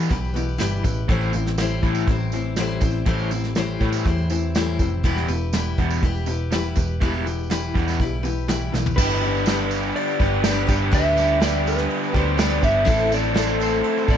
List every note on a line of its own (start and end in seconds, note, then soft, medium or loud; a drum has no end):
0.00 0.58 E3 medium
0.00 0.10 E4 medium
0.00 0.11 G4 medium
0.00 0.11 B4 medium
0.09 0.57 B1 medium
0.09 0.33 E2 medium
0.09 0.33 B2 medium
0.09 0.34 G3 medium
0.09 0.35 E4 medium
0.09 0.35 G4 medium
0.09 0.32 B4 medium
0.09 kick medium
0.09 closed hi-hat medium
0.24 tambourine soft
0.34 0.57 E2 medium
0.34 0.58 B2 medium
0.34 0.58 E4 soft
0.34 0.59 G4 medium
0.34 0.59 B4 medium
0.34 closed hi-hat medium
0.34 tambourine medium
0.49 tambourine soft
0.58 0.83 G1 medium
0.58 0.81 E2 medium
0.58 0.82 B2 medium
0.58 0.84 E3 loud
0.58 0.84 G3 medium
0.58 0.84 E4 medium
0.58 0.84 G4 medium
0.58 0.83 B4 medium
0.58 snare medium
0.58 closed hi-hat medium
0.58 tambourine medium
0.73 tambourine soft
0.84 1.06 A1 medium
0.84 1.06 E2 medium
0.84 1.07 B2 medium
0.84 1.10 E4 soft
0.84 1.10 G4 soft
0.84 1.09 B4 medium
0.84 kick medium
0.84 closed hi-hat medium
0.84 tambourine medium
1.08 1.32 A1 medium
1.08 1.32 A2 medium
1.08 1.34 A2 medium
1.08 1.32 E3 medium
1.08 1.34 E3 medium
1.08 1.34 G3 medium
1.08 1.32 A3 medium
1.08 1.35 C4 medium
1.08 1.35 E4 medium
1.08 1.33 C5 medium
1.08 kick loud
1.08 closed hi-hat medium
1.21 tambourine soft
1.33 1.81 A1 medium
1.33 1.56 A2 medium
1.33 1.56 E3 medium
1.33 1.60 E4 soft
1.33 1.59 C5 soft
1.33 closed hi-hat medium
1.33 tambourine medium
1.37 1.59 G3 soft
1.37 1.60 C4 soft
1.46 snare soft
1.58 1.80 A2 medium
1.58 2.09 A2 medium
1.58 1.81 E3 medium
1.58 2.59 E3 medium
1.58 2.07 G3 medium
1.58 2.08 C4 loud
1.58 2.10 E4 medium
1.58 2.09 C5 loud
1.58 snare medium
1.58 closed hi-hat medium
1.58 tambourine medium
1.83 2.06 A1 medium
1.83 2.06 A2 medium
1.83 2.06 E3 medium
1.83 2.07 A3 medium
1.83 kick medium
1.83 closed hi-hat medium
1.83 tambourine soft
1.95 tambourine medium
2.07 2.78 A1 medium
2.07 2.30 A2 medium
2.07 2.30 E3 medium
2.07 2.33 G3 medium
2.07 2.34 C4 medium
2.07 2.33 E4 medium
2.07 kick loud
2.07 closed hi-hat medium
2.12 2.32 C5 medium
2.19 tambourine soft
2.32 2.55 A2 medium
2.32 2.55 E3 medium
2.32 2.59 C4 medium
2.32 2.58 E4 medium
2.32 2.58 C5 medium
2.32 closed hi-hat medium
2.32 tambourine medium
2.36 2.58 G3 soft
2.56 2.80 A2 medium
2.56 2.83 A2 medium
2.56 2.80 E3 medium
2.56 2.83 E3 medium
2.56 2.83 G3 medium
2.56 2.82 C4 medium
2.56 2.80 C5 loud
2.56 snare loud
2.56 closed hi-hat medium
2.56 tambourine medium
2.60 2.81 E4 medium
2.81 3.05 A1 medium
2.81 3.04 A2 medium
2.81 3.04 E3 medium
2.81 3.06 G3 soft
2.81 3.06 C4 medium
2.81 3.07 E4 medium
2.81 3.06 C5 medium
2.81 kick medium
2.81 closed hi-hat medium
2.81 tambourine medium
3.06 3.77 A1 loud
3.06 3.30 A2 medium
3.06 3.31 A2 medium
3.06 3.31 E3 medium
3.06 3.30 E3 medium
3.06 3.32 G3 medium
3.06 3.30 A3 medium
3.06 3.31 C4 medium
3.06 3.31 E4 medium
3.06 3.30 C5 loud
3.06 kick loud
3.06 closed hi-hat medium
3.19 tambourine soft
3.31 3.54 A2 medium
3.31 3.54 E3 medium
3.31 3.56 G3 soft
3.31 3.57 C4 soft
3.31 3.57 E4 medium
3.31 3.56 C5 soft
3.31 closed hi-hat medium
3.31 tambourine medium
3.44 snare soft
3.55 3.78 A2 medium
3.55 4.06 A2 medium
3.55 3.79 E3 medium
3.55 4.55 E3 medium
3.55 4.05 G3 medium
3.55 4.06 C4 medium
3.55 4.08 E4 loud
3.55 4.07 C5 medium
3.55 snare medium
3.55 closed hi-hat medium
3.55 tambourine medium
3.80 4.04 A2 medium
3.80 4.04 E3 medium
3.80 4.04 A3 loud
3.80 kick medium
3.80 closed hi-hat medium
3.80 tambourine soft
3.93 tambourine medium
4.05 4.81 E2 loud
4.05 4.27 A2 medium
4.05 4.28 E3 medium
4.05 4.30 G3 medium
4.05 4.31 C4 medium
4.05 4.31 E4 medium
4.05 kick medium
4.05 closed hi-hat medium
4.10 4.29 C5 medium
4.18 tambourine soft
4.30 4.52 A2 medium
4.30 4.53 E3 medium
4.30 4.55 G3 soft
4.30 4.55 C4 medium
4.30 4.55 E4 medium
4.30 4.55 C5 medium
4.30 closed hi-hat medium
4.30 tambourine medium
4.55 4.80 A2 loud
4.55 4.77 A2 medium
4.55 4.80 E3 medium
4.55 4.78 E3 medium
4.55 4.80 G3 medium
4.55 4.80 C4 medium
4.55 4.79 E4 loud
4.55 4.78 C5 medium
4.55 snare medium
4.55 closed hi-hat medium
4.55 tambourine medium
4.79 5.03 F1 medium
4.79 5.02 A2 medium
4.79 5.02 E3 medium
4.79 5.03 G3 soft
4.79 5.04 C4 medium
4.79 5.04 E4 medium
4.79 5.04 C5 medium
4.79 kick medium
4.79 closed hi-hat medium
4.79 tambourine medium
5.03 5.27 E1 medium
5.03 5.28 E2 medium
5.03 5.27 B2 medium
5.03 5.28 E3 medium
5.03 5.29 G3 medium
5.03 5.29 E4 medium
5.03 5.29 G4 medium
5.03 5.27 B4 medium
5.03 kick loud
5.03 closed hi-hat medium
5.17 snare soft
5.17 tambourine soft
5.28 5.75 E1 medium
5.28 5.51 E2 medium
5.28 5.51 B2 medium
5.28 5.53 E4 soft
5.28 5.54 G4 soft
5.28 5.53 B4 medium
5.28 closed hi-hat medium
5.28 tambourine medium
5.53 5.75 E2 medium
5.53 5.76 B2 medium
5.53 6.03 E3 medium
5.53 6.02 G3 medium
5.53 6.02 E4 medium
5.53 6.04 G4 medium
5.53 6.05 B4 medium
5.53 snare medium
5.53 closed hi-hat medium
5.53 tambourine medium
5.78 6.01 E1 medium
5.78 6.01 E2 medium
5.78 6.01 B2 medium
5.78 6.02 E3 medium
5.78 kick medium
5.78 closed hi-hat medium
5.78 tambourine soft
5.90 tambourine medium
6.02 6.73 E1 medium
6.02 6.25 E2 medium
6.02 6.25 B2 medium
6.02 6.27 G3 medium
6.02 6.28 E4 medium
6.02 6.28 G4 medium
6.02 6.26 B4 medium
6.02 kick loud
6.02 closed hi-hat medium
6.15 tambourine soft
6.26 6.49 E2 medium
6.26 6.50 B2 medium
6.26 6.53 G4 soft
6.26 6.52 B4 medium
6.26 closed hi-hat medium
6.26 tambourine medium
6.31 6.53 E4 soft
6.51 6.74 E2 medium
6.51 6.74 B2 medium
6.51 6.77 E3 loud
6.51 6.77 G3 loud
6.51 6.78 E4 medium
6.51 6.76 G4 medium
6.51 6.75 B4 medium
6.51 snare loud
6.51 closed hi-hat medium
6.51 tambourine medium
6.76 7.00 E1 medium
6.76 6.98 E2 medium
6.76 6.99 B2 medium
6.76 7.01 E4 soft
6.76 7.02 G4 medium
6.76 7.01 B4 medium
6.76 kick medium
6.76 closed hi-hat medium
6.76 tambourine medium
7.01 7.71 E1 medium
7.01 7.24 E2 medium
7.01 7.25 B2 medium
7.01 7.26 E3 medium
7.01 7.25 E3 medium
7.01 7.26 G3 medium
7.01 7.26 E4 medium
7.01 7.26 G4 medium
7.01 7.25 B4 medium
7.01 kick loud
7.01 closed hi-hat medium
7.01 tambourine soft
7.14 tambourine soft
7.26 7.48 E2 medium
7.26 7.48 B2 medium
7.26 7.50 E4 soft
7.26 7.50 G4 soft
7.26 7.50 B4 soft
7.26 closed hi-hat medium
7.26 tambourine medium
7.39 tambourine soft
7.50 7.73 E2 medium
7.50 7.73 B2 medium
7.50 7.99 E3 medium
7.50 7.99 G3 medium
7.50 8.00 E4 medium
7.50 8.00 G4 medium
7.50 8.00 B4 medium
7.50 snare medium
7.50 closed hi-hat medium
7.50 tambourine medium
7.64 tambourine soft
7.75 7.98 E2 medium
7.75 7.98 B2 medium
7.75 7.98 E3 medium
7.75 kick medium
7.75 closed hi-hat medium
7.75 tambourine soft
7.88 snare soft
7.88 tambourine medium
7.99 8.69 B1 medium
7.99 8.21 E2 medium
7.99 8.22 B2 medium
7.99 8.24 G3 medium
7.99 8.25 E4 medium
7.99 8.24 G4 medium
7.99 8.22 B4 medium
7.99 kick medium
7.99 closed hi-hat medium
7.99 tambourine soft
8.23 8.46 E2 medium
8.23 8.46 B2 medium
8.23 8.49 E4 soft
8.23 8.49 G4 medium
8.23 8.48 B4 medium
8.23 closed hi-hat medium
8.23 tambourine medium
8.38 tambourine soft
8.48 8.70 E2 medium
8.48 8.71 B2 medium
8.48 8.73 E3 medium
8.48 8.73 G3 medium
8.48 8.74 E4 medium
8.48 8.74 G4 medium
8.48 8.72 B4 medium
8.48 snare loud
8.48 closed hi-hat medium
8.48 tambourine medium
8.73 8.96 B1 medium
8.73 8.95 E2 medium
8.73 8.95 B2 medium
8.73 8.99 G4 soft
8.73 8.98 B4 medium
8.73 snare medium
8.73 tambourine medium
8.77 8.98 E4 soft
8.86 floor tom medium
8.86 tambourine soft
8.96 9.91 G1 medium
8.96 9.45 G2 medium
8.96 9.45 D3 medium
8.96 9.24 G3 medium
8.96 9.22 G3 medium
8.96 9.23 B3 loud
8.96 9.22 D4 medium
8.96 9.23 D4 medium
8.96 9.22 G4 loud
8.96 12.85 G4 medium
8.96 9.23 G4 medium
8.96 9.66 B4 loud
8.96 kick loud
8.96 crash loud
8.96 tambourine medium
9.00 12.85 D4 medium
9.00 12.85 B4 medium
9.00 9.22 B4 medium
9.22 9.46 G3 medium
9.22 9.47 B3 medium
9.22 9.47 D4 medium
9.22 9.47 G4 medium
9.22 9.48 G4 soft
9.22 9.47 B4 medium
9.22 open hi-hat medium
9.26 9.47 D4 soft
9.35 tambourine soft
9.46 10.44 G2 medium
9.46 10.44 D3 medium
9.46 10.20 G3 loud
9.46 10.20 G3 medium
9.46 10.20 B3 medium
9.46 10.19 D4 loud
9.46 10.21 D4 medium
9.46 10.18 G4 loud
9.46 10.19 G4 medium
9.46 snare medium
9.46 open hi-hat medium
9.46 tambourine loud
9.51 10.18 B4 medium
9.71 open hi-hat medium
9.71 tambourine medium
9.83 tambourine soft
9.96 10.94 D5 medium
9.96 open hi-hat medium
10.07 tambourine soft
10.19 10.66 G1 medium
10.19 10.43 G3 medium
10.19 10.43 B3 medium
10.19 10.44 D4 medium
10.19 10.44 D4 soft
10.19 10.44 G4 medium
10.19 10.45 G4 medium
10.19 10.44 B4 medium
10.19 kick medium
10.19 open hi-hat medium
10.19 tambourine soft
10.44 10.68 G3 medium
10.44 10.69 G3 medium
10.44 10.69 B3 medium
10.44 10.69 D4 medium
10.44 10.68 D4 medium
10.44 10.68 G4 medium
10.44 10.65 B4 medium
10.44 snare loud
10.44 open hi-hat medium
10.44 tambourine loud
10.67 10.91 G1 medium
10.67 10.93 B3 medium
10.67 10.93 D4 medium
10.67 10.91 D4 soft
10.67 10.93 G4 medium
10.67 10.91 G4 medium
10.67 10.92 B4 medium
10.67 kick medium
10.67 open hi-hat medium
10.67 tambourine medium
10.71 10.93 G3 medium
10.91 11.86 D2 loud
10.91 11.39 G2 medium
10.91 11.39 D3 loud
10.91 11.16 G3 medium
10.91 11.17 G3 loud
10.91 11.17 B3 medium
10.91 11.17 D4 medium
10.91 11.16 D4 loud
10.91 11.17 G4 medium
10.91 11.15 G4 medium
10.91 11.15 B4 medium
10.91 11.39 E5 loud
10.91 kick loud
10.91 open hi-hat medium
10.91 tambourine medium
11.06 tambourine soft
11.16 11.39 G3 medium
11.16 11.40 B3 medium
11.16 11.40 D4 medium
11.16 11.41 D4 soft
11.16 11.41 G4 medium
11.16 11.41 G4 soft
11.16 11.41 B4 soft
11.16 open hi-hat medium
11.16 tambourine medium
11.40 12.38 G2 loud
11.40 12.38 D3 medium
11.40 12.14 G3 medium
11.40 12.13 B3 medium
11.40 12.12 D4 medium
11.40 12.15 D4 medium
11.40 12.12 G4 loud
11.40 12.15 G4 medium
11.40 12.13 B4 medium
11.40 11.67 D5 loud
11.40 snare loud
11.40 open hi-hat medium
11.40 tambourine loud
11.65 12.17 B4 loud
11.65 open hi-hat medium
11.65 tambourine medium
11.78 snare soft
11.90 open hi-hat medium
12.03 tambourine soft
12.13 12.60 D2 medium
12.13 12.36 G3 medium
12.13 12.37 B3 medium
12.13 12.38 D4 medium
12.13 12.38 G4 medium
12.13 12.39 G4 medium
12.13 12.39 B4 medium
12.13 kick medium
12.13 open hi-hat medium
12.13 tambourine soft
12.17 12.38 D4 soft
12.17 12.39 C5 loud
12.37 12.63 G3 medium
12.37 12.62 G3 medium
12.37 12.62 B3 medium
12.37 12.63 D4 medium
12.37 12.62 D4 medium
12.37 12.61 G4 medium
12.37 12.60 B4 medium
12.37 12.62 D5 medium
12.37 snare loud
12.37 open hi-hat medium
12.37 tambourine loud
12.61 12.86 G1 loud
12.61 12.86 G3 medium
12.61 12.86 B3 medium
12.61 12.86 D4 medium
12.61 12.86 D4 soft
12.61 12.85 G4 medium
12.61 12.86 G4 medium
12.61 12.86 B4 medium
12.61 13.14 E5 loud
12.61 kick medium
12.61 open hi-hat medium
12.61 tambourine medium
12.85 13.81 A1 loud
12.85 13.10 A2 medium
12.85 13.34 A2 medium
12.85 13.11 E3 medium
12.85 13.34 E3 loud
12.85 13.11 A3 medium
12.85 13.11 C4 medium
12.85 13.13 C4 medium
12.85 13.11 E4 medium
12.85 14.17 E4 medium
12.85 13.11 E4 loud
12.85 13.09 A4 medium
12.85 14.17 A4 medium
12.85 14.17 C5 medium
12.85 kick loud
12.85 open hi-hat medium
12.85 tambourine medium
12.89 13.11 A4 loud
12.99 tambourine soft
13.10 13.33 A3 soft
13.10 13.35 C4 soft
13.10 13.36 C4 medium
13.10 13.36 E4 medium
13.10 13.35 A4 medium
13.10 13.36 A4 medium
13.10 13.62 D5 loud
13.10 open hi-hat medium
13.10 tambourine medium
13.25 tambourine soft
13.34 14.17 A2 medium
13.34 14.17 E3 medium
13.34 14.08 A3 medium
13.34 14.09 C4 medium
13.34 14.09 C4 loud
13.34 14.08 E4 loud
13.34 14.08 E4 medium
13.34 14.07 A4 medium
13.34 snare medium
13.34 open hi-hat medium
13.34 tambourine medium
13.60 14.11 C5 loud
13.60 open hi-hat medium
13.60 tambourine medium
13.84 open hi-hat medium
13.98 tambourine soft
14.08 14.17 A1 medium
14.08 14.17 A3 soft
14.08 14.17 C4 medium
14.08 14.17 E4 medium
14.08 14.17 A4 medium
14.08 14.17 A4 soft
14.08 14.17 D5 loud
14.08 kick medium
14.08 open hi-hat medium
14.08 tambourine soft